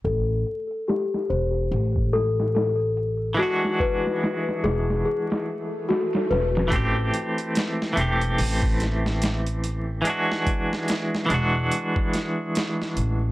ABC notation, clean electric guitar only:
X:1
M:4/4
L:1/8
Q:"Swing 16ths" 1/4=72
K:Ador
V:1 name="Clean electric guitar"
z8 | [E,^G,DF]8 | [E,A,CG]3 [E,A,CG]4- [E,A,CG] | [E,^G,DF]3 [E,G,DF]4- [E,G,DF] |]